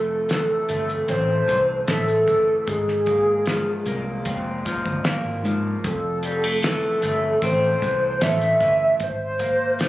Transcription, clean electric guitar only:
Already playing: F2 F3 A3 C4
0.30 E3
0.70 A3
1.08 C4
1.48 E3
1.88 A3
2.28 E3
2.68 G#2
3.07 A#3
3.47 F3
3.87 A#3
4.27 C4
4.66 F3
5.05 A#3
5.45 F3
5.85 F2
6.25 G3
6.44 A3
6.64 E3
7.03 A3
7.43 C4
7.83 E3
8.23 A3
8.63 E3
9.40 A#3
9.80 F3

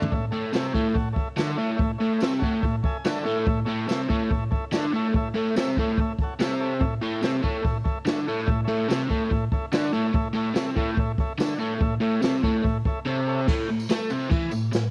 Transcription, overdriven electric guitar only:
Already playing: D3 D4
0.12 A2
0.32 A2 A3
0.53 C3 C4
0.74 A2 A3
0.95 A2
1.37 D3 D4
1.58 A2 A3
1.79 A2
2.01 A2 A3
2.22 C3 C4
2.43 A2 A3
2.64 A2
3.05 D3 D4
3.26 A2 A3
3.47 A2
3.67 A2 A3
3.88 C3 C4
4.09 A2 A3
4.31 A2
4.72 D3 D4
4.92 A2 A3
5.14 A2
5.34 A2 A3
5.56 C3 C4
5.78 A2 A3
5.99 A2
6.39 C3 C4
6.81 A2
7.02 A2 A3
7.23 C3 C4
7.43 A2 A3
7.63 A2
8.05 D3 D4
8.28 A2 A3
8.47 A2
8.68 A2 A3
8.88 C3 C4
9.09 A2 A3
9.30 A2
9.73 D3 D4
9.93 A2 A3
10.13 A2
10.33 A2 A3
10.54 C3 C4
10.76 A2 A3
10.96 A2
11.38 D3 D4
11.58 A2 A3
11.79 A2
12.00 A2 A3
12.21 C3 C4
12.43 A2 A3
12.64 A2
13.05 C3 C4
13.48 A2 A3
13.70 A2
13.90 A3 A4
14.11 C3 C4
14.30 E3 E4
14.52 A2
14.73 A2

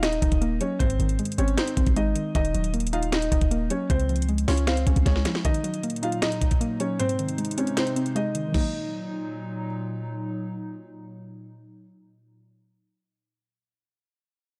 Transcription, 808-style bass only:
Already playing: D#1
0.22 D#1
0.32 D#1
0.80 G#1
1.00 G#1
1.38 G#1
1.77 G#1
1.87 G#1
2.35 D#1
2.54 D#1
3.32 D#1
3.42 D#1
3.90 C#2
4.48 C#2
4.87 C#2
4.96 C#2
5.06 C#2

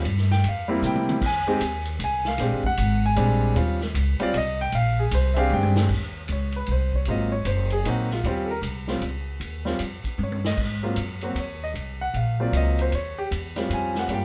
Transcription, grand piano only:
0.32 G5
0.48 F5
0.68 G3 A#3 C4 E4
0.86 G5
1.26 G#5
1.47 G#3 C4 D#4 G4
2.04 G#5
2.27 F5
2.40 G#3 C4 D4 G4
2.66 F#5
3.06 G#5
3.16 G3 G#3 C4 D4
3.56 G3 C4 C#4 F4
4.20 G3 C4 C#4 F4 D5
4.37 D#5
4.61 G5
4.75 F5
4.99 G#4
5.14 C5
5.34 C4 D4 G4 G#4 E5
5.39 F5
5.54 G5
6.32 C#5
6.56 B4
6.72 C5
6.96 C#5
7.08 F#3 A#3 C4 F4 D#5
7.32 C#5
7.47 C5
7.72 G#4
7.85 F#3 A#3 C4 D#4 F#4
8.13 F4
8.25 G3 C4 C#4 F4 G4
8.46 A4
8.51 A#4
8.88 G3 C4 C#4 F4
9.65 G3 C4 C#4 F4
10.23 C#5
10.46 D#5
10.83 F#3 A#3 C4 F4
11.23 F#3 A#3 C4 F#4
11.40 C#5
11.64 D#5
12.01 F#5
12.16 F5
12.40 F#3 A#3 C4 F4 D5
12.53 D5
12.57 D#5
12.81 C5
12.95 C#5
13.18 G4
13.56 G3 C4 C#4 F4
13.74 G#5
13.99 F#5
14.10 G3 A#3 C#4 F4 G5

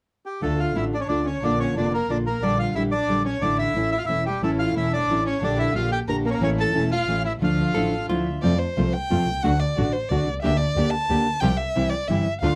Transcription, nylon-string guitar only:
0.41 D3 A3 D4 F4
0.76 D3 A3 D4 F4
1.09 D3 A3 D4 F4
1.43 D3 A#3 D4 F4
1.76 D3 A#3 D4 F4
2.09 D3 A#3 D4 F4
2.42 D3 G3 D4 G4
2.75 D3 G3 D4 G4
3.09 D3 G3 D4 G4
3.42 D3 A3 D4 E4
3.76 E3 A3 C#4 E4
4.08 E3 A3 C#4 E4
4.42 E3 A3 C#4 E4
4.76 E3 A3 C#4 E4
5.09 E3 A3 C#4 E4
5.42 D3 A3 D4 G4
5.75 D3 A3 D4 G4
6.08 D3 A3 D4 G4
6.41 E3 A3 C#4 E4
6.74 E3 A3 C#4 E4
7.08 E3 A3 C#4 E4
7.41 D3 F3 A3 D4
7.75 D3 F3 A3 D4 E4
8.09 D3 F3 A3 D4 E4
8.43 C3 F3 A3 C4 F4
8.77 C3 F3 A3 C4 F4
9.10 C3 F3 A3 C4 F4
9.43 D3 A3 D4 F#4
9.77 D3 A3 D4 F#4
10.11 D3 A3 D4 F#4
10.43 D3 A#3 D4 G4
10.77 D3 A#3 D4 G4
11.10 D3 A#3 D4 G4
11.42 C3 F3 G3 C4 G4
11.75 C3 E3 G3 C4 E4
12.09 C3 E3 G3 C4 E4
12.42 D3 A3 D4 F4

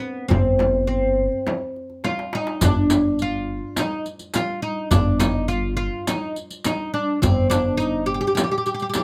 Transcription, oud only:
0.00 B3
0.28 C4
0.87 C4
2.04 F4
2.35 D#4
2.64 D4
3.22 F4
3.79 D#4
4.35 F4
4.62 D#4
4.91 D4
5.20 D#4
5.48 F4
5.77 F4
6.08 D#4
6.66 D#4
6.94 D4
7.22 C4
7.50 D4
7.77 D#4
8.06 G4
8.14 G4
8.21 G4
8.27 G4
8.35 G4
8.44 G4
8.51 G4
8.58 G4
8.66 G4
8.74 G4
8.82 G4
8.89 G4
8.96 G4

